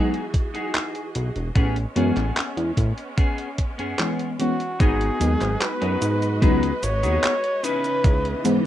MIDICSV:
0, 0, Header, 1, 7, 480
1, 0, Start_track
1, 0, Tempo, 810811
1, 922, Time_signature, 4, 2, 24, 8
1, 5129, End_track
2, 0, Start_track
2, 0, Title_t, "Flugelhorn"
2, 0, Program_c, 0, 56
2, 2603, Note_on_c, 0, 66, 99
2, 2842, Note_on_c, 0, 68, 119
2, 2851, Note_off_c, 0, 66, 0
2, 3324, Note_on_c, 0, 71, 114
2, 3333, Note_off_c, 0, 68, 0
2, 3797, Note_off_c, 0, 71, 0
2, 3800, Note_on_c, 0, 71, 110
2, 4045, Note_on_c, 0, 73, 121
2, 4054, Note_off_c, 0, 71, 0
2, 4522, Note_on_c, 0, 71, 121
2, 4531, Note_off_c, 0, 73, 0
2, 5083, Note_off_c, 0, 71, 0
2, 5129, End_track
3, 0, Start_track
3, 0, Title_t, "Clean electric guitar"
3, 0, Program_c, 1, 27
3, 0, Note_on_c, 1, 63, 89
3, 0, Note_on_c, 1, 66, 83
3, 0, Note_on_c, 1, 68, 101
3, 140, Note_off_c, 1, 63, 0
3, 143, Note_off_c, 1, 66, 0
3, 146, Note_off_c, 1, 68, 0
3, 319, Note_on_c, 1, 63, 85
3, 324, Note_on_c, 1, 66, 77
3, 329, Note_on_c, 1, 68, 95
3, 620, Note_off_c, 1, 63, 0
3, 623, Note_off_c, 1, 66, 0
3, 625, Note_off_c, 1, 68, 0
3, 918, Note_on_c, 1, 59, 107
3, 923, Note_on_c, 1, 61, 96
3, 928, Note_on_c, 1, 68, 117
3, 1041, Note_off_c, 1, 59, 0
3, 1043, Note_off_c, 1, 61, 0
3, 1046, Note_off_c, 1, 68, 0
3, 1158, Note_on_c, 1, 59, 82
3, 1163, Note_on_c, 1, 61, 82
3, 1169, Note_on_c, 1, 68, 95
3, 1521, Note_off_c, 1, 59, 0
3, 1524, Note_off_c, 1, 61, 0
3, 1527, Note_off_c, 1, 68, 0
3, 1878, Note_on_c, 1, 59, 88
3, 1883, Note_on_c, 1, 61, 79
3, 1889, Note_on_c, 1, 68, 100
3, 2061, Note_off_c, 1, 59, 0
3, 2063, Note_off_c, 1, 61, 0
3, 2066, Note_off_c, 1, 68, 0
3, 2239, Note_on_c, 1, 59, 83
3, 2244, Note_on_c, 1, 61, 76
3, 2249, Note_on_c, 1, 68, 97
3, 2540, Note_off_c, 1, 59, 0
3, 2543, Note_off_c, 1, 61, 0
3, 2545, Note_off_c, 1, 68, 0
3, 2839, Note_on_c, 1, 59, 109
3, 2842, Note_on_c, 1, 63, 99
3, 2845, Note_on_c, 1, 66, 102
3, 2849, Note_on_c, 1, 68, 125
3, 3141, Note_off_c, 1, 59, 0
3, 3143, Note_off_c, 1, 63, 0
3, 3144, Note_off_c, 1, 66, 0
3, 3146, Note_off_c, 1, 68, 0
3, 3439, Note_on_c, 1, 59, 83
3, 3442, Note_on_c, 1, 63, 78
3, 3446, Note_on_c, 1, 66, 81
3, 3449, Note_on_c, 1, 71, 97
3, 3621, Note_off_c, 1, 59, 0
3, 3622, Note_off_c, 1, 63, 0
3, 3624, Note_off_c, 1, 66, 0
3, 3626, Note_off_c, 1, 71, 0
3, 3798, Note_on_c, 1, 59, 90
3, 3802, Note_on_c, 1, 63, 86
3, 3806, Note_on_c, 1, 66, 80
3, 3809, Note_on_c, 1, 68, 99
3, 3981, Note_off_c, 1, 59, 0
3, 3983, Note_off_c, 1, 63, 0
3, 3984, Note_off_c, 1, 66, 0
3, 3986, Note_off_c, 1, 68, 0
3, 4160, Note_on_c, 1, 59, 85
3, 4163, Note_on_c, 1, 63, 80
3, 4167, Note_on_c, 1, 66, 81
3, 4171, Note_on_c, 1, 68, 93
3, 4341, Note_off_c, 1, 59, 0
3, 4343, Note_off_c, 1, 63, 0
3, 4344, Note_off_c, 1, 66, 0
3, 4346, Note_off_c, 1, 68, 0
3, 4517, Note_on_c, 1, 61, 95
3, 4521, Note_on_c, 1, 63, 84
3, 4525, Note_on_c, 1, 64, 85
3, 4528, Note_on_c, 1, 71, 101
3, 5129, Note_off_c, 1, 61, 0
3, 5129, Note_off_c, 1, 63, 0
3, 5129, Note_off_c, 1, 64, 0
3, 5129, Note_off_c, 1, 71, 0
3, 5129, End_track
4, 0, Start_track
4, 0, Title_t, "String section"
4, 0, Program_c, 2, 48
4, 0, Note_on_c, 2, 52, 77
4, 0, Note_on_c, 2, 66, 70
4, 0, Note_on_c, 2, 68, 84
4, 0, Note_on_c, 2, 75, 70
4, 897, Note_off_c, 2, 75, 0
4, 902, Note_off_c, 2, 52, 0
4, 902, Note_off_c, 2, 66, 0
4, 902, Note_off_c, 2, 68, 0
4, 921, Note_on_c, 2, 59, 70
4, 921, Note_on_c, 2, 61, 80
4, 922, Note_on_c, 2, 56, 76
4, 2822, Note_off_c, 2, 59, 0
4, 2822, Note_off_c, 2, 61, 0
4, 2823, Note_off_c, 2, 56, 0
4, 2842, Note_on_c, 2, 56, 74
4, 2842, Note_on_c, 2, 66, 72
4, 2842, Note_on_c, 2, 71, 86
4, 2842, Note_on_c, 2, 75, 73
4, 4505, Note_off_c, 2, 56, 0
4, 4505, Note_off_c, 2, 66, 0
4, 4505, Note_off_c, 2, 71, 0
4, 4521, Note_on_c, 2, 52, 91
4, 4522, Note_on_c, 2, 49, 81
4, 4522, Note_on_c, 2, 59, 76
4, 5129, Note_off_c, 2, 49, 0
4, 5129, Note_off_c, 2, 52, 0
4, 5129, Note_off_c, 2, 59, 0
4, 5129, Note_off_c, 2, 75, 0
4, 5129, End_track
5, 0, Start_track
5, 0, Title_t, "FM electric piano"
5, 0, Program_c, 3, 5
5, 0, Note_on_c, 3, 54, 93
5, 0, Note_on_c, 3, 56, 84
5, 0, Note_on_c, 3, 59, 85
5, 0, Note_on_c, 3, 63, 104
5, 64, Note_off_c, 3, 54, 0
5, 65, Note_off_c, 3, 56, 0
5, 67, Note_off_c, 3, 59, 0
5, 68, Note_off_c, 3, 63, 0
5, 1158, Note_on_c, 3, 52, 91
5, 1160, Note_on_c, 3, 56, 90
5, 1164, Note_on_c, 3, 59, 86
5, 1167, Note_on_c, 3, 61, 107
5, 1263, Note_off_c, 3, 52, 0
5, 1264, Note_off_c, 3, 56, 0
5, 1266, Note_off_c, 3, 59, 0
5, 1267, Note_off_c, 3, 61, 0
5, 2360, Note_on_c, 3, 52, 83
5, 2362, Note_on_c, 3, 56, 70
5, 2366, Note_on_c, 3, 59, 71
5, 2368, Note_on_c, 3, 61, 85
5, 2573, Note_off_c, 3, 52, 0
5, 2574, Note_off_c, 3, 56, 0
5, 2576, Note_off_c, 3, 59, 0
5, 2577, Note_off_c, 3, 61, 0
5, 2599, Note_on_c, 3, 52, 91
5, 2602, Note_on_c, 3, 56, 84
5, 2604, Note_on_c, 3, 59, 81
5, 2608, Note_on_c, 3, 61, 98
5, 2665, Note_off_c, 3, 52, 0
5, 2666, Note_off_c, 3, 56, 0
5, 2667, Note_off_c, 3, 59, 0
5, 2669, Note_off_c, 3, 61, 0
5, 3074, Note_on_c, 3, 54, 76
5, 3080, Note_on_c, 3, 56, 72
5, 3085, Note_on_c, 3, 59, 71
5, 3092, Note_on_c, 3, 63, 84
5, 3769, Note_off_c, 3, 54, 0
5, 3773, Note_off_c, 3, 56, 0
5, 3775, Note_off_c, 3, 59, 0
5, 3778, Note_off_c, 3, 63, 0
5, 3797, Note_on_c, 3, 54, 93
5, 3800, Note_on_c, 3, 56, 84
5, 3803, Note_on_c, 3, 59, 87
5, 3807, Note_on_c, 3, 63, 105
5, 3903, Note_off_c, 3, 54, 0
5, 3904, Note_off_c, 3, 56, 0
5, 3906, Note_off_c, 3, 59, 0
5, 3907, Note_off_c, 3, 63, 0
5, 4996, Note_on_c, 3, 52, 96
5, 4999, Note_on_c, 3, 56, 88
5, 5002, Note_on_c, 3, 59, 92
5, 5006, Note_on_c, 3, 63, 106
5, 5102, Note_off_c, 3, 52, 0
5, 5104, Note_off_c, 3, 56, 0
5, 5105, Note_off_c, 3, 59, 0
5, 5107, Note_off_c, 3, 63, 0
5, 5129, End_track
6, 0, Start_track
6, 0, Title_t, "Analog synth bass"
6, 0, Program_c, 4, 38
6, 683, Note_on_c, 4, 35, 87
6, 772, Note_off_c, 4, 35, 0
6, 805, Note_on_c, 4, 28, 86
6, 892, Note_off_c, 4, 28, 0
6, 921, Note_on_c, 4, 33, 100
6, 1100, Note_off_c, 4, 33, 0
6, 1162, Note_on_c, 4, 42, 101
6, 1251, Note_off_c, 4, 42, 0
6, 1282, Note_on_c, 4, 33, 104
6, 1371, Note_off_c, 4, 33, 0
6, 1521, Note_on_c, 4, 40, 95
6, 1610, Note_off_c, 4, 40, 0
6, 1642, Note_on_c, 4, 45, 84
6, 1732, Note_off_c, 4, 45, 0
6, 2243, Note_on_c, 4, 42, 44
6, 2338, Note_off_c, 4, 42, 0
6, 2842, Note_on_c, 4, 32, 100
6, 3020, Note_off_c, 4, 32, 0
6, 3082, Note_on_c, 4, 39, 99
6, 3172, Note_off_c, 4, 39, 0
6, 3204, Note_on_c, 4, 32, 105
6, 3292, Note_off_c, 4, 32, 0
6, 3445, Note_on_c, 4, 42, 95
6, 3532, Note_off_c, 4, 42, 0
6, 3562, Note_on_c, 4, 44, 86
6, 3801, Note_on_c, 4, 37, 100
6, 3810, Note_off_c, 4, 44, 0
6, 3980, Note_off_c, 4, 37, 0
6, 4042, Note_on_c, 4, 32, 97
6, 4163, Note_on_c, 4, 39, 99
6, 4172, Note_off_c, 4, 32, 0
6, 4251, Note_off_c, 4, 39, 0
6, 4761, Note_on_c, 4, 37, 99
6, 4940, Note_off_c, 4, 37, 0
6, 5002, Note_on_c, 4, 44, 102
6, 5092, Note_off_c, 4, 44, 0
6, 5129, End_track
7, 0, Start_track
7, 0, Title_t, "Drums"
7, 82, Note_on_c, 9, 42, 37
7, 142, Note_off_c, 9, 42, 0
7, 201, Note_on_c, 9, 36, 97
7, 203, Note_on_c, 9, 42, 84
7, 260, Note_off_c, 9, 36, 0
7, 262, Note_off_c, 9, 42, 0
7, 324, Note_on_c, 9, 42, 40
7, 383, Note_off_c, 9, 42, 0
7, 442, Note_on_c, 9, 39, 116
7, 442, Note_on_c, 9, 42, 65
7, 501, Note_off_c, 9, 39, 0
7, 501, Note_off_c, 9, 42, 0
7, 562, Note_on_c, 9, 42, 39
7, 621, Note_off_c, 9, 42, 0
7, 681, Note_on_c, 9, 42, 89
7, 740, Note_off_c, 9, 42, 0
7, 803, Note_on_c, 9, 42, 37
7, 862, Note_off_c, 9, 42, 0
7, 921, Note_on_c, 9, 36, 117
7, 921, Note_on_c, 9, 42, 64
7, 980, Note_off_c, 9, 36, 0
7, 980, Note_off_c, 9, 42, 0
7, 1043, Note_on_c, 9, 42, 41
7, 1102, Note_off_c, 9, 42, 0
7, 1161, Note_on_c, 9, 42, 91
7, 1220, Note_off_c, 9, 42, 0
7, 1282, Note_on_c, 9, 39, 36
7, 1282, Note_on_c, 9, 42, 38
7, 1342, Note_off_c, 9, 39, 0
7, 1342, Note_off_c, 9, 42, 0
7, 1402, Note_on_c, 9, 39, 109
7, 1402, Note_on_c, 9, 42, 66
7, 1461, Note_off_c, 9, 39, 0
7, 1461, Note_off_c, 9, 42, 0
7, 1524, Note_on_c, 9, 42, 39
7, 1583, Note_off_c, 9, 42, 0
7, 1641, Note_on_c, 9, 36, 60
7, 1643, Note_on_c, 9, 42, 94
7, 1700, Note_off_c, 9, 36, 0
7, 1702, Note_off_c, 9, 42, 0
7, 1763, Note_on_c, 9, 42, 39
7, 1822, Note_off_c, 9, 42, 0
7, 1881, Note_on_c, 9, 36, 115
7, 1881, Note_on_c, 9, 42, 64
7, 1940, Note_off_c, 9, 36, 0
7, 1941, Note_off_c, 9, 42, 0
7, 2002, Note_on_c, 9, 42, 40
7, 2062, Note_off_c, 9, 42, 0
7, 2121, Note_on_c, 9, 36, 61
7, 2121, Note_on_c, 9, 42, 94
7, 2180, Note_off_c, 9, 42, 0
7, 2181, Note_off_c, 9, 36, 0
7, 2243, Note_on_c, 9, 42, 41
7, 2302, Note_off_c, 9, 42, 0
7, 2361, Note_on_c, 9, 39, 116
7, 2361, Note_on_c, 9, 42, 68
7, 2420, Note_off_c, 9, 39, 0
7, 2420, Note_off_c, 9, 42, 0
7, 2483, Note_on_c, 9, 42, 39
7, 2542, Note_off_c, 9, 42, 0
7, 2602, Note_on_c, 9, 42, 94
7, 2661, Note_off_c, 9, 42, 0
7, 2724, Note_on_c, 9, 42, 42
7, 2783, Note_off_c, 9, 42, 0
7, 2842, Note_on_c, 9, 36, 123
7, 2844, Note_on_c, 9, 42, 70
7, 2844, Note_on_c, 9, 69, 29
7, 2901, Note_off_c, 9, 36, 0
7, 2903, Note_off_c, 9, 42, 0
7, 2903, Note_off_c, 9, 69, 0
7, 2965, Note_on_c, 9, 42, 45
7, 3024, Note_off_c, 9, 42, 0
7, 3082, Note_on_c, 9, 42, 93
7, 3082, Note_on_c, 9, 69, 66
7, 3142, Note_off_c, 9, 42, 0
7, 3142, Note_off_c, 9, 69, 0
7, 3203, Note_on_c, 9, 39, 37
7, 3203, Note_on_c, 9, 42, 41
7, 3203, Note_on_c, 9, 69, 39
7, 3262, Note_off_c, 9, 39, 0
7, 3262, Note_off_c, 9, 42, 0
7, 3262, Note_off_c, 9, 69, 0
7, 3322, Note_on_c, 9, 39, 118
7, 3322, Note_on_c, 9, 42, 67
7, 3322, Note_on_c, 9, 69, 29
7, 3381, Note_off_c, 9, 39, 0
7, 3381, Note_off_c, 9, 42, 0
7, 3381, Note_off_c, 9, 69, 0
7, 3443, Note_on_c, 9, 42, 39
7, 3502, Note_off_c, 9, 42, 0
7, 3563, Note_on_c, 9, 42, 102
7, 3563, Note_on_c, 9, 69, 67
7, 3622, Note_off_c, 9, 42, 0
7, 3622, Note_off_c, 9, 69, 0
7, 3684, Note_on_c, 9, 42, 42
7, 3684, Note_on_c, 9, 69, 37
7, 3743, Note_off_c, 9, 42, 0
7, 3743, Note_off_c, 9, 69, 0
7, 3802, Note_on_c, 9, 36, 125
7, 3804, Note_on_c, 9, 42, 70
7, 3804, Note_on_c, 9, 69, 27
7, 3861, Note_off_c, 9, 36, 0
7, 3863, Note_off_c, 9, 42, 0
7, 3863, Note_off_c, 9, 69, 0
7, 3924, Note_on_c, 9, 42, 42
7, 3984, Note_off_c, 9, 42, 0
7, 4043, Note_on_c, 9, 42, 99
7, 4043, Note_on_c, 9, 69, 65
7, 4102, Note_off_c, 9, 42, 0
7, 4102, Note_off_c, 9, 69, 0
7, 4164, Note_on_c, 9, 42, 44
7, 4164, Note_on_c, 9, 69, 40
7, 4224, Note_off_c, 9, 42, 0
7, 4224, Note_off_c, 9, 69, 0
7, 4283, Note_on_c, 9, 39, 120
7, 4283, Note_on_c, 9, 42, 70
7, 4283, Note_on_c, 9, 69, 30
7, 4342, Note_off_c, 9, 39, 0
7, 4342, Note_off_c, 9, 42, 0
7, 4342, Note_off_c, 9, 69, 0
7, 4403, Note_on_c, 9, 42, 43
7, 4462, Note_off_c, 9, 42, 0
7, 4522, Note_on_c, 9, 42, 95
7, 4522, Note_on_c, 9, 69, 68
7, 4581, Note_off_c, 9, 42, 0
7, 4581, Note_off_c, 9, 69, 0
7, 4642, Note_on_c, 9, 42, 43
7, 4642, Note_on_c, 9, 69, 39
7, 4701, Note_off_c, 9, 42, 0
7, 4701, Note_off_c, 9, 69, 0
7, 4761, Note_on_c, 9, 36, 124
7, 4763, Note_on_c, 9, 42, 70
7, 4763, Note_on_c, 9, 69, 28
7, 4820, Note_off_c, 9, 36, 0
7, 4822, Note_off_c, 9, 42, 0
7, 4822, Note_off_c, 9, 69, 0
7, 4884, Note_on_c, 9, 42, 43
7, 4943, Note_off_c, 9, 42, 0
7, 5002, Note_on_c, 9, 42, 99
7, 5002, Note_on_c, 9, 69, 68
7, 5061, Note_off_c, 9, 42, 0
7, 5061, Note_off_c, 9, 69, 0
7, 5129, End_track
0, 0, End_of_file